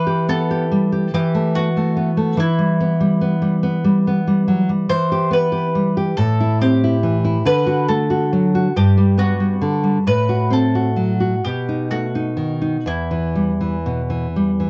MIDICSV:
0, 0, Header, 1, 3, 480
1, 0, Start_track
1, 0, Key_signature, 1, "minor"
1, 0, Tempo, 846262
1, 1355, Time_signature, 6, 3, 24, 8
1, 4231, Tempo, 862069
1, 5191, Tempo, 906344
1, 6631, Tempo, 983607
1, 7996, End_track
2, 0, Start_track
2, 0, Title_t, "Mandolin"
2, 0, Program_c, 0, 25
2, 0, Note_on_c, 0, 71, 64
2, 145, Note_off_c, 0, 71, 0
2, 165, Note_on_c, 0, 69, 60
2, 627, Note_off_c, 0, 69, 0
2, 650, Note_on_c, 0, 67, 59
2, 868, Note_off_c, 0, 67, 0
2, 880, Note_on_c, 0, 66, 55
2, 1331, Note_off_c, 0, 66, 0
2, 1360, Note_on_c, 0, 64, 61
2, 2528, Note_off_c, 0, 64, 0
2, 2776, Note_on_c, 0, 72, 77
2, 3003, Note_off_c, 0, 72, 0
2, 3025, Note_on_c, 0, 71, 58
2, 3490, Note_off_c, 0, 71, 0
2, 3499, Note_on_c, 0, 69, 64
2, 3729, Note_off_c, 0, 69, 0
2, 3752, Note_on_c, 0, 67, 58
2, 4207, Note_off_c, 0, 67, 0
2, 4234, Note_on_c, 0, 71, 78
2, 4457, Note_off_c, 0, 71, 0
2, 4468, Note_on_c, 0, 69, 56
2, 4927, Note_off_c, 0, 69, 0
2, 4960, Note_on_c, 0, 67, 56
2, 5178, Note_off_c, 0, 67, 0
2, 5193, Note_on_c, 0, 66, 56
2, 5639, Note_off_c, 0, 66, 0
2, 5662, Note_on_c, 0, 71, 67
2, 5882, Note_off_c, 0, 71, 0
2, 5904, Note_on_c, 0, 69, 48
2, 6366, Note_off_c, 0, 69, 0
2, 6389, Note_on_c, 0, 67, 50
2, 6616, Note_off_c, 0, 67, 0
2, 6633, Note_on_c, 0, 66, 52
2, 7084, Note_off_c, 0, 66, 0
2, 7105, Note_on_c, 0, 64, 48
2, 7996, Note_off_c, 0, 64, 0
2, 7996, End_track
3, 0, Start_track
3, 0, Title_t, "Nylon-string guitar"
3, 0, Program_c, 1, 24
3, 0, Note_on_c, 1, 52, 47
3, 37, Note_on_c, 1, 67, 38
3, 162, Note_on_c, 1, 59, 38
3, 235, Note_off_c, 1, 67, 0
3, 287, Note_on_c, 1, 67, 37
3, 358, Note_off_c, 1, 59, 0
3, 406, Note_on_c, 1, 55, 39
3, 481, Note_off_c, 1, 67, 0
3, 524, Note_on_c, 1, 67, 41
3, 599, Note_off_c, 1, 55, 0
3, 624, Note_off_c, 1, 52, 0
3, 645, Note_off_c, 1, 67, 0
3, 645, Note_on_c, 1, 52, 52
3, 763, Note_on_c, 1, 57, 36
3, 888, Note_on_c, 1, 59, 35
3, 953, Note_off_c, 1, 57, 0
3, 1003, Note_on_c, 1, 57, 35
3, 1074, Note_off_c, 1, 59, 0
3, 1115, Note_on_c, 1, 59, 40
3, 1191, Note_off_c, 1, 57, 0
3, 1232, Note_on_c, 1, 57, 36
3, 1306, Note_off_c, 1, 59, 0
3, 1334, Note_off_c, 1, 52, 0
3, 1345, Note_on_c, 1, 52, 52
3, 1352, Note_off_c, 1, 57, 0
3, 1467, Note_on_c, 1, 55, 41
3, 1590, Note_on_c, 1, 59, 41
3, 1657, Note_off_c, 1, 55, 0
3, 1704, Note_on_c, 1, 55, 37
3, 1778, Note_off_c, 1, 59, 0
3, 1822, Note_on_c, 1, 59, 39
3, 1895, Note_off_c, 1, 55, 0
3, 1939, Note_on_c, 1, 55, 39
3, 2015, Note_off_c, 1, 59, 0
3, 2059, Note_on_c, 1, 59, 42
3, 2134, Note_off_c, 1, 55, 0
3, 2181, Note_on_c, 1, 55, 42
3, 2255, Note_off_c, 1, 59, 0
3, 2310, Note_on_c, 1, 59, 38
3, 2377, Note_off_c, 1, 55, 0
3, 2425, Note_on_c, 1, 55, 39
3, 2502, Note_off_c, 1, 59, 0
3, 2539, Note_on_c, 1, 54, 38
3, 2618, Note_off_c, 1, 55, 0
3, 2661, Note_on_c, 1, 55, 39
3, 2663, Note_off_c, 1, 54, 0
3, 2758, Note_off_c, 1, 52, 0
3, 2777, Note_on_c, 1, 52, 55
3, 2783, Note_off_c, 1, 55, 0
3, 2902, Note_on_c, 1, 67, 42
3, 3010, Note_on_c, 1, 59, 43
3, 3097, Note_off_c, 1, 67, 0
3, 3131, Note_on_c, 1, 67, 38
3, 3212, Note_off_c, 1, 59, 0
3, 3263, Note_on_c, 1, 55, 41
3, 3334, Note_off_c, 1, 67, 0
3, 3386, Note_on_c, 1, 67, 42
3, 3461, Note_off_c, 1, 55, 0
3, 3487, Note_off_c, 1, 52, 0
3, 3506, Note_on_c, 1, 45, 49
3, 3511, Note_off_c, 1, 67, 0
3, 3632, Note_on_c, 1, 64, 42
3, 3751, Note_on_c, 1, 60, 41
3, 3823, Note_off_c, 1, 64, 0
3, 3878, Note_on_c, 1, 64, 41
3, 3942, Note_off_c, 1, 60, 0
3, 3988, Note_on_c, 1, 52, 43
3, 4064, Note_off_c, 1, 64, 0
3, 4109, Note_on_c, 1, 64, 38
3, 4180, Note_off_c, 1, 52, 0
3, 4205, Note_off_c, 1, 45, 0
3, 4228, Note_on_c, 1, 50, 50
3, 4230, Note_off_c, 1, 64, 0
3, 4345, Note_on_c, 1, 66, 41
3, 4470, Note_on_c, 1, 57, 40
3, 4542, Note_off_c, 1, 66, 0
3, 4588, Note_on_c, 1, 66, 40
3, 4664, Note_off_c, 1, 57, 0
3, 4714, Note_on_c, 1, 54, 38
3, 4783, Note_off_c, 1, 66, 0
3, 4838, Note_on_c, 1, 66, 42
3, 4905, Note_off_c, 1, 54, 0
3, 4929, Note_off_c, 1, 50, 0
3, 4954, Note_off_c, 1, 66, 0
3, 4957, Note_on_c, 1, 43, 48
3, 5074, Note_on_c, 1, 55, 37
3, 5187, Note_on_c, 1, 59, 36
3, 5262, Note_off_c, 1, 55, 0
3, 5306, Note_on_c, 1, 55, 37
3, 5374, Note_off_c, 1, 59, 0
3, 5419, Note_on_c, 1, 50, 42
3, 5494, Note_off_c, 1, 55, 0
3, 5536, Note_on_c, 1, 55, 33
3, 5610, Note_off_c, 1, 50, 0
3, 5641, Note_off_c, 1, 43, 0
3, 5657, Note_off_c, 1, 55, 0
3, 5659, Note_on_c, 1, 45, 44
3, 5777, Note_on_c, 1, 66, 36
3, 5890, Note_on_c, 1, 60, 39
3, 5969, Note_off_c, 1, 66, 0
3, 6021, Note_on_c, 1, 66, 34
3, 6087, Note_off_c, 1, 60, 0
3, 6134, Note_on_c, 1, 54, 33
3, 6214, Note_off_c, 1, 66, 0
3, 6260, Note_on_c, 1, 66, 35
3, 6332, Note_off_c, 1, 54, 0
3, 6362, Note_off_c, 1, 45, 0
3, 6383, Note_off_c, 1, 66, 0
3, 6394, Note_on_c, 1, 47, 45
3, 6516, Note_on_c, 1, 63, 33
3, 6635, Note_on_c, 1, 57, 30
3, 6703, Note_off_c, 1, 63, 0
3, 6753, Note_on_c, 1, 63, 32
3, 6817, Note_off_c, 1, 57, 0
3, 6858, Note_on_c, 1, 51, 33
3, 6937, Note_off_c, 1, 63, 0
3, 6979, Note_on_c, 1, 63, 32
3, 7051, Note_off_c, 1, 51, 0
3, 7088, Note_off_c, 1, 47, 0
3, 7098, Note_on_c, 1, 40, 41
3, 7101, Note_off_c, 1, 63, 0
3, 7219, Note_on_c, 1, 52, 31
3, 7339, Note_on_c, 1, 55, 29
3, 7415, Note_off_c, 1, 52, 0
3, 7463, Note_on_c, 1, 52, 28
3, 7535, Note_off_c, 1, 55, 0
3, 7586, Note_on_c, 1, 47, 30
3, 7657, Note_off_c, 1, 52, 0
3, 7703, Note_on_c, 1, 52, 31
3, 7779, Note_off_c, 1, 47, 0
3, 7831, Note_on_c, 1, 55, 30
3, 7899, Note_off_c, 1, 52, 0
3, 7946, Note_on_c, 1, 52, 29
3, 7996, Note_off_c, 1, 40, 0
3, 7996, Note_off_c, 1, 52, 0
3, 7996, Note_off_c, 1, 55, 0
3, 7996, End_track
0, 0, End_of_file